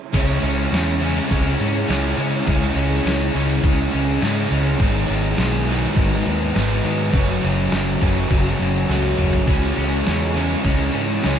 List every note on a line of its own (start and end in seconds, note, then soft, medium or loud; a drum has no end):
0.14 0.38 C#2 medium
0.14 0.43 C#3 medium
0.14 0.44 G#3 loud
0.14 0.45 C#4 loud
0.14 4.78 E4 medium
0.14 4.78 G#4 medium
0.14 4.77 C#5 medium
0.14 11.39 G#5 medium
0.14 kick loud
0.14 crash medium
0.18 1.00 E4 medium
0.43 0.66 C#2 medium
0.43 0.72 C#3 medium
0.43 0.73 G#3 medium
0.43 0.73 C#4 loud
0.43 crash medium
0.72 1.19 E2 medium
0.72 1.02 C#3 medium
0.72 1.03 G#3 loud
0.72 1.03 C#4 medium
0.72 snare loud
0.72 crash medium
1.00 1.31 C#3 medium
1.00 1.32 G#3 medium
1.00 1.32 C#4 loud
1.00 1.87 E4 medium
1.00 crash medium
1.31 1.55 C#2 medium
1.31 1.59 C#3 medium
1.31 1.61 G#3 medium
1.31 1.60 C#4 loud
1.31 kick loud
1.31 crash medium
1.60 1.84 G#2 medium
1.60 1.87 C#3 medium
1.60 1.89 G#3 medium
1.60 1.88 C#4 loud
1.60 crash medium
1.89 2.13 C#2 medium
1.89 2.16 C#3 loud
1.89 2.18 G#3 loud
1.89 2.17 C#4 loud
1.89 2.46 E4 medium
1.89 snare loud
1.89 crash medium
2.18 2.45 C#3 medium
2.18 2.41 C#3 medium
2.18 2.47 G#3 medium
2.18 2.47 C#4 medium
2.18 crash medium
2.46 2.71 C#2 loud
2.46 2.74 C#3 medium
2.46 2.75 G#3 loud
2.46 2.75 C#4 medium
2.46 3.32 E4 loud
2.46 kick loud
2.46 crash medium
2.75 2.99 C#2 loud
2.75 3.03 C#3 medium
2.75 3.04 G#3 loud
2.75 3.04 C#4 medium
2.75 crash medium
3.04 3.29 C#2 medium
3.04 3.32 C#3 medium
3.04 3.34 G#3 medium
3.04 3.33 C#4 medium
3.04 snare loud
3.04 crash medium
3.33 3.59 C#2 medium
3.33 3.62 C#3 medium
3.33 3.63 G#3 medium
3.33 3.62 C#4 medium
3.33 4.20 E4 medium
3.33 crash medium
3.63 3.87 C#2 medium
3.63 3.91 C#3 medium
3.63 3.92 G#3 loud
3.63 3.92 C#4 medium
3.63 kick loud
3.63 crash medium
3.92 4.17 C#2 medium
3.92 4.20 C#3 medium
3.92 4.22 G#3 medium
3.92 4.21 C#4 medium
3.92 crash medium
4.21 4.46 G#2 medium
4.21 4.50 C#3 loud
4.21 4.52 G#3 loud
4.21 4.51 C#4 loud
4.21 snare loud
4.21 crash medium
4.26 4.81 E4 loud
4.51 4.75 C#2 medium
4.51 4.79 C#3 medium
4.51 4.82 G#3 loud
4.51 4.79 C#4 medium
4.51 crash medium
4.80 5.04 G#1 loud
4.80 5.09 G#2 medium
4.80 5.09 D#3 loud
4.80 5.10 G#3 loud
4.80 5.68 B3 loud
4.80 5.68 D#4 loud
4.80 9.45 F#4 medium
4.80 7.12 B4 medium
4.80 7.12 D#5 medium
4.80 kick loud
4.80 crash medium
5.09 5.33 G#1 medium
5.09 5.38 G#2 medium
5.09 5.39 D#3 loud
5.09 5.40 G#3 medium
5.09 crash medium
5.38 5.86 B1 medium
5.38 5.69 G#2 medium
5.38 5.69 D#3 loud
5.38 5.71 G#3 loud
5.38 snare loud
5.38 crash medium
5.67 5.96 G#2 medium
5.67 5.96 D#3 medium
5.67 6.25 G#3 medium
5.67 6.55 B3 medium
5.67 6.55 D#4 medium
5.67 crash medium
5.71 5.98 G#3 medium
5.96 6.21 G#1 medium
5.96 6.24 G#2 medium
5.96 6.25 D#3 medium
5.96 6.27 G#3 loud
5.96 kick loud
5.96 crash medium
6.26 6.50 D#2 medium
6.26 6.54 G#2 medium
6.26 6.54 D#3 medium
6.26 6.56 G#3 medium
6.26 crash medium
6.55 6.79 G#1 medium
6.55 6.83 G#2 medium
6.55 6.84 D#3 medium
6.55 6.85 G#3 loud
6.55 snare loud
6.55 crash medium
6.59 7.14 B3 medium
6.59 7.14 D#4 medium
6.85 7.12 G#2 medium
6.85 7.09 G#2 medium
6.85 7.12 D#3 medium
6.85 7.14 G#3 medium
6.85 crash medium
7.13 7.37 F#1 medium
7.13 7.41 F#2 medium
7.13 7.42 C#3 loud
7.13 7.42 F#3 loud
7.13 9.45 A4 medium
7.13 11.39 C#5 medium
7.13 kick loud
7.13 crash medium
7.17 8.02 A3 loud
7.17 8.01 C#4 loud
7.42 7.68 F#1 medium
7.42 7.70 F#2 medium
7.42 7.71 C#3 medium
7.42 7.72 F#3 medium
7.42 crash medium
7.72 7.96 F#1 medium
7.72 7.99 F#2 loud
7.72 8.00 C#3 loud
7.72 8.01 F#3 loud
7.72 snare loud
7.72 crash medium
8.01 8.26 F#1 medium
8.01 8.29 F#2 medium
8.01 8.29 C#3 medium
8.01 8.30 F#3 medium
8.01 8.89 A3 medium
8.01 8.91 C#4 medium
8.01 kick medium
8.01 crash medium
8.06 8.87 F#2 medium
8.30 8.55 F#1 loud
8.30 8.58 F#2 medium
8.30 8.59 C#3 loud
8.30 8.60 F#3 loud
8.30 kick loud
8.30 crash medium
8.60 8.84 F#1 medium
8.60 8.88 F#2 medium
8.60 8.89 C#3 medium
8.60 8.89 F#3 loud
8.60 crash medium
8.89 9.13 C#2 medium
8.89 9.17 F#2 medium
8.89 9.17 C#3 loud
8.89 9.17 F#3 loud
8.89 9.47 A3 medium
8.89 9.50 C#4 medium
8.89 snare medium
9.18 9.43 F#1 medium
9.18 9.46 F#2 medium
9.18 9.46 C#3 medium
9.18 9.46 F#3 medium
9.18 mid tom medium
9.33 floor tom medium
9.47 9.72 C#2 loud
9.47 9.77 C#3 medium
9.47 10.38 E3 medium
9.47 9.78 G#3 medium
9.47 9.77 C#4 loud
9.47 11.39 E4 medium
9.47 11.39 G#4 medium
9.47 kick loud
9.47 crash medium
9.77 10.01 C#2 medium
9.77 10.06 C#3 medium
9.77 10.06 G#3 loud
9.77 10.07 C#4 loud
9.77 crash medium
10.06 10.54 E2 medium
10.06 10.35 C#3 medium
10.06 10.36 G#3 medium
10.06 10.36 C#4 medium
10.06 snare loud
10.06 crash medium
10.35 10.63 C#3 medium
10.35 11.23 E3 medium
10.35 10.64 G#3 medium
10.35 10.63 C#4 medium
10.35 crash medium
10.64 10.89 C#2 loud
10.64 10.92 C#3 loud
10.64 10.94 G#3 loud
10.64 10.93 C#4 loud
10.64 kick loud
10.64 crash medium
10.94 11.19 G#2 medium
10.94 11.22 C#3 medium
10.94 11.23 G#3 medium
10.94 11.23 C#4 medium
10.94 crash medium
11.23 11.39 C#2 medium
11.23 11.39 C#3 medium
11.23 11.39 E3 medium
11.23 11.39 G#3 loud
11.23 11.39 C#4 loud
11.23 snare loud
11.23 crash medium